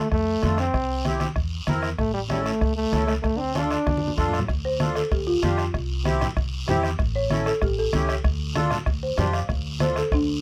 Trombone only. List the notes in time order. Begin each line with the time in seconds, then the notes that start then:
Already playing: A3
0.12 A3
0.59 C4
1.99 A3
2.14 G3
2.29 G3
2.45 A3
2.76 A3
3.07 A3
3.22 A3
3.36 C4 D4
3.54 D4